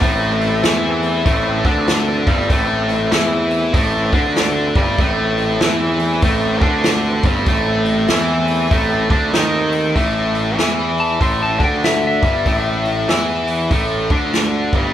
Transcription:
0.01 picked electric bass A1, distorted electric guitar A2 A3, tonewheel organ E3 A3 C4 A4, kick, open hi-hat
0.41 open hi-hat
0.63 picked electric bass E2, distorted electric guitar E3 E4, snare, open hi-hat
1.03 open hi-hat
1.26 picked electric bass A1, distorted electric guitar A2 A3, kick, open hi-hat
1.65 picked electric bass D2, distorted electric guitar D3 D4, kick, open hi-hat
1.87 snare, open hi-hat
2.27 picked electric bass G1, distorted electric guitar G2 G3, kick, open hi-hat
2.49 picked electric bass A1, distorted electric guitar A2 A3, tonewheel organ E3 A3 C4, kick, open hi-hat
2.89 open hi-hat
3.11 picked electric bass E2, distorted electric guitar E3 E4, snare, open hi-hat
3.51 open hi-hat
3.73 picked electric bass A1, distorted electric guitar A2 A3, kick, open hi-hat
4.13 picked electric bass D2, distorted electric guitar D3 D4, kick, open hi-hat
4.36 snare, open hi-hat
4.75 picked electric bass G1, distorted electric guitar G2 G3, kick, open hi-hat
4.98 picked electric bass A1, distorted electric guitar A2 A3, tonewheel organ E3 A3 C4, kick, open hi-hat
5.38 open hi-hat
5.60 picked electric bass E2, distorted electric guitar E3 E4, snare, open hi-hat
5.99 open hi-hat
6.22 picked electric bass A1, distorted electric guitar A2 A3, kick, open hi-hat
6.61 picked electric bass D2, distorted electric guitar D3 D4, kick, open hi-hat
6.84 snare, open hi-hat
7.23 picked electric bass G1, distorted electric guitar G2 G3, kick, open hi-hat
7.46 picked electric bass A1, distorted electric guitar A2 A3, tonewheel organ A3 C4 A4, kick, open hi-hat
7.85 open hi-hat
8.08 picked electric bass E2, distorted electric guitar E3 E4, snare, open hi-hat
8.48 open hi-hat
8.71 picked electric bass A1, distorted electric guitar A2 A3, kick, open hi-hat
9.10 picked electric bass D2, distorted electric guitar D3 D4, kick, open hi-hat
9.33 picked electric bass D#2, distorted electric guitar D#3 D#4, snare, open hi-hat
9.72 open hi-hat
9.96 picked electric bass A1, distorted electric guitar A2 A3, kick, open hi-hat
10.35 open hi-hat
10.58 picked electric bass E2, distorted electric guitar E3 E4, snare, open hi-hat
10.98 lead electric guitar A5, open hi-hat
11.21 picked electric bass A1, distorted electric guitar A2 A3, lead electric guitar C6, kick, open hi-hat
11.43 lead electric guitar A5
11.59 picked electric bass D2, distorted electric guitar D3 D4, kick, open hi-hat
11.64 lead electric guitar G5
11.84 lead electric guitar E5, snare, open hi-hat
12.07 lead electric guitar E5
12.23 picked electric bass G1, distorted electric guitar G2 G3, kick, open hi-hat
12.46 picked electric bass A1, distorted electric guitar A2 A3, kick, open hi-hat
12.85 open hi-hat
13.09 picked electric bass E2, distorted electric guitar E3 E4, snare, open hi-hat
13.48 open hi-hat
13.71 picked electric bass A1, distorted electric guitar A2 A3, kick, open hi-hat
14.10 picked electric bass D2, distorted electric guitar D3 D4, kick, open hi-hat
14.33 snare, open hi-hat
14.73 picked electric bass G1, distorted electric guitar G2 G3, kick, open hi-hat

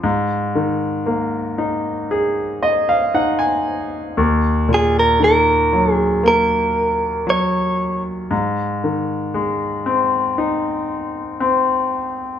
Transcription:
0.04 grand piano G#2
0.55 grand piano D#3
1.06 grand piano A#3
1.58 grand piano D#4
2.11 grand piano G#4
2.63 grand piano D#5
2.89 grand piano F5
3.14 grand piano D#4 F#5
3.39 grand piano G#5
4.17 grand piano D#2
4.69 grand piano A#2
4.74 clean electric guitar G#4
4.99 clean electric guitar A#4
5.20 grand piano D#3
5.24 clean electric guitar A#4
5.73 grand piano F#3
5.93 clean electric guitar G#4
6.23 grand piano A#3
6.28 clean electric guitar A#4
7.27 grand piano F#3, clean electric guitar C#5
8.31 grand piano G#2
8.84 grand piano D#3
9.34 grand piano G#3
9.86 grand piano C4
10.38 grand piano D#4
11.40 grand piano C4

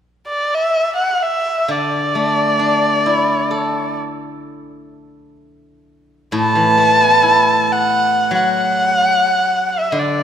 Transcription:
0.28 erhu D5
0.55 erhu E5
0.96 erhu F#5
1.15 erhu F#5
1.22 erhu E5
1.68 guzheng D3, erhu D5
2.15 guzheng A3
2.59 guzheng D4
3.06 guzheng E4
3.51 guzheng A4
6.32 guzheng A2, erhu A5
6.55 guzheng E3
6.78 guzheng A3
7.01 guzheng B3
7.23 guzheng E4
7.72 erhu F#5
8.31 guzheng F#3
8.35 erhu F#5
9.79 erhu E5
9.92 guzheng D3
9.99 erhu D5

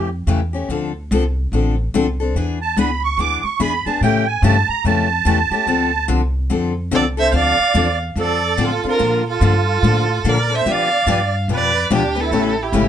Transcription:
Already playing: upright bass F2
0.27 upright bass E2, steel-string acoustic guitar C#3 E3 A3 C#4 G4
0.53 steel-string acoustic guitar A3 C#4 G4
0.69 upright bass D2, steel-string acoustic guitar D3 F3 C4 D4 A4
1.11 upright bass C2, steel-string acoustic guitar D3 F3 C4 D4 A4
1.52 upright bass A1, steel-string acoustic guitar D3 F3 C4 D4 A4
1.94 upright bass C2, steel-string acoustic guitar D3 F3 C4 D4 A4
2.20 steel-string acoustic guitar C4 D4 A4
2.35 upright bass E2, steel-string acoustic guitar E3 B3 D4 G#4
2.61 accordion A5
2.77 upright bass C#2, steel-string acoustic guitar E3 B3 D4 G#4, accordion B5
3.04 accordion C#6
3.18 upright bass D2, steel-string acoustic guitar E3 B3 D4 G#4, accordion D6
3.44 accordion C#6, muted upright bass stroke
3.60 upright bass E2, steel-string acoustic guitar E3 B3 D4 G#4, accordion B5
3.86 steel-string acoustic guitar B3 D4 G#4, accordion A5, muted upright bass stroke
4.01 upright bass A2, steel-string acoustic guitar C#3 E3 A3 C#4 G4, accordion G5
4.27 accordion G#5
4.42 upright bass G2, steel-string acoustic guitar C#3 E3 A3 C#4 G4, accordion A5
4.69 accordion A#5, muted upright bass stroke
4.84 upright bass F2, steel-string acoustic guitar C#3 E3 A3 C#4 G4, accordion A5
5.25 upright bass E2, steel-string acoustic guitar C#3 E3 A3 C#4 G4
5.50 steel-string acoustic guitar A3 C#4 G4, muted upright bass stroke
5.66 upright bass D2, steel-string acoustic guitar D3 F3 C4 D4 A4
6.08 upright bass C2, steel-string acoustic guitar D3 F3 C4 D4 A4
6.50 upright bass F2, steel-string acoustic guitar D3 F3 C4 D4 A4
6.91 upright bass C2, steel-string acoustic guitar D3 F3 C4 D4 A4, accordion A4, violin D5
7.17 steel-string acoustic guitar C4 D4 A4, accordion C5, violin E5
7.32 upright bass D2, steel-string acoustic guitar D3 F3 C4 D4 A4, accordion D5, violin F5
7.59 muted upright bass stroke
7.74 upright bass E2, steel-string acoustic guitar D3 F3 C4 D4 A4
8.16 upright bass F2, steel-string acoustic guitar D3 F3 C4 D4 A4
8.20 accordion A4, violin D5
8.57 upright bass A2, steel-string acoustic guitar D3 F3 C4 D4 A4
8.62 accordion F4, violin A4
8.84 steel-string acoustic guitar C4 D4 A4, accordion F4, muted upright bass stroke
8.89 violin A#4
8.99 upright bass A#2, steel-string acoustic guitar D3 F3 A#3 D4 A4
9.29 accordion F4, violin A4
9.41 upright bass G2, steel-string acoustic guitar D3 F3 A#3 D4 A4
9.83 upright bass A2, steel-string acoustic guitar D3 F3 A#3 D4 A4
10.24 upright bass A#2, steel-string acoustic guitar D3 F3 A#3 D4 A4
10.29 accordion A#4, violin D5
10.49 steel-string acoustic guitar A#3 D4 A4, accordion C5
10.55 violin E5
10.66 steel-string acoustic guitar B2 F3 B3 D4 G4 B4, upright bass D3
10.70 accordion D5, violin F5
11.06 upright bass G2, steel-string acoustic guitar B2 F3 B3 D4 G4 B4
11.48 upright bass F2, steel-string acoustic guitar B2 F3 B3 D4 G4 B4
11.53 accordion B4, violin D5
11.90 upright bass D2, steel-string acoustic guitar B2 F3 B3 D4 G4 B4
11.94 accordion D4, violin G4
12.15 steel-string acoustic guitar B3 D4 G4 B4
12.20 accordion E4, violin A4
12.31 upright bass A1, steel-string acoustic guitar C#3 E3 A3 C#4 G4
12.60 accordion E4, violin G4
12.72 upright bass G#1, steel-string acoustic guitar C#3 E3 A3 C#4 G4

